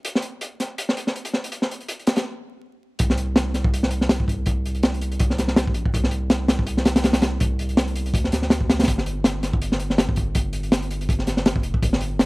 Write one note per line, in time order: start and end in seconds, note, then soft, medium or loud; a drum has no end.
0.05 closed hi-hat medium
0.15 snare medium
0.22 closed hi-hat medium
0.41 closed hi-hat medium
0.60 snare soft
0.60 closed hi-hat medium
0.78 closed hi-hat medium
0.89 snare soft
0.97 closed hi-hat medium
1.07 snare soft
1.16 closed hi-hat medium
1.25 closed hi-hat medium
1.33 snare soft
1.44 closed hi-hat medium
1.52 closed hi-hat medium
1.62 snare soft
1.71 closed hi-hat medium
1.81 closed hi-hat soft
1.88 closed hi-hat medium
1.99 closed hi-hat soft
2.07 snare medium
2.07 closed hi-hat medium
2.16 snare loud
2.16 closed hi-hat medium
2.99 4.45 C2 loud
2.99 kick loud
2.99 closed hi-hat medium
3.10 snare medium
3.17 closed hi-hat medium
3.36 snare loud
3.36 closed hi-hat medium
3.54 snare soft
3.54 closed hi-hat medium
3.64 kick loud
3.74 closed hi-hat medium
3.83 snare soft
3.91 closed hi-hat medium
4.01 snare soft
4.09 snare loud
4.09 closed hi-hat medium
4.20 kick medium
4.28 kick medium
4.28 closed hi-hat medium
4.46 5.74 C2 loud
4.46 kick loud
4.46 closed hi-hat medium
4.66 closed hi-hat medium
4.75 closed hi-hat soft
4.83 snare loud
4.83 closed hi-hat medium
4.94 closed hi-hat soft
5.01 closed hi-hat medium
5.12 closed hi-hat soft
5.20 kick loud
5.20 closed hi-hat medium
5.30 snare soft
5.38 snare soft
5.38 closed hi-hat medium
5.48 snare soft
5.56 snare loud
5.56 closed hi-hat medium
5.67 kick loud
5.74 5.84 A#1 loud
5.74 closed hi-hat medium
5.85 kick medium
5.94 7.40 C2 loud
5.94 kick loud
5.94 closed hi-hat medium
6.04 snare medium
6.11 closed hi-hat medium
6.30 snare loud
6.30 closed hi-hat medium
6.48 snare loud
6.48 closed hi-hat medium
6.59 kick medium
6.67 closed hi-hat medium
6.77 snare soft
6.85 snare medium
6.85 closed hi-hat medium
6.96 snare loud
6.96 closed hi-hat medium
7.04 snare loud
7.04 closed hi-hat medium
7.13 snare loud
7.13 closed hi-hat medium
7.22 snare loud
7.22 closed hi-hat medium
7.40 8.15 C2 loud
7.40 kick loud
7.40 closed hi-hat medium
7.59 closed hi-hat medium
7.69 closed hi-hat soft
7.77 snare loud
7.77 closed hi-hat medium
7.88 closed hi-hat soft
7.96 closed hi-hat medium
8.06 closed hi-hat soft
8.14 8.31 D2 medium
8.14 kick loud
8.14 closed hi-hat medium
8.24 snare soft
8.32 8.87 D2 medium
8.32 snare soft
8.32 closed hi-hat medium
8.42 snare soft
8.50 snare loud
8.50 closed hi-hat medium
8.61 kick medium
8.70 snare loud
8.70 closed hi-hat medium
8.79 snare medium
8.79 closed hi-hat medium
8.83 snare medium
8.83 closed hi-hat medium
8.88 10.34 G1 loud
8.88 kick loud
8.88 closed hi-hat loud
8.98 snare medium
9.06 closed hi-hat medium
9.24 snare loud
9.24 closed hi-hat medium
9.43 snare soft
9.43 closed hi-hat medium
9.53 kick loud
9.62 closed hi-hat medium
9.72 snare soft
9.80 closed hi-hat medium
9.90 snare soft
9.98 snare loud
9.98 closed hi-hat medium
10.09 kick medium
10.16 kick medium
10.16 closed hi-hat medium
10.35 11.63 G1 loud
10.35 kick loud
10.35 closed hi-hat medium
10.53 closed hi-hat medium
10.63 closed hi-hat soft
10.72 snare loud
10.72 closed hi-hat medium
10.82 closed hi-hat soft
10.91 closed hi-hat medium
11.01 closed hi-hat soft
11.09 kick loud
11.09 closed hi-hat medium
11.19 snare soft
11.27 snare soft
11.27 closed hi-hat medium
11.37 snare soft
11.46 snare loud
11.46 closed hi-hat medium
11.56 kick loud
11.63 11.73 F1 loud
11.63 closed hi-hat medium
11.74 kick loud
11.82 12.26 G1 loud
11.82 kick loud
11.82 closed hi-hat medium
11.93 snare medium
12.01 closed hi-hat medium
12.19 snare loud
12.19 closed hi-hat medium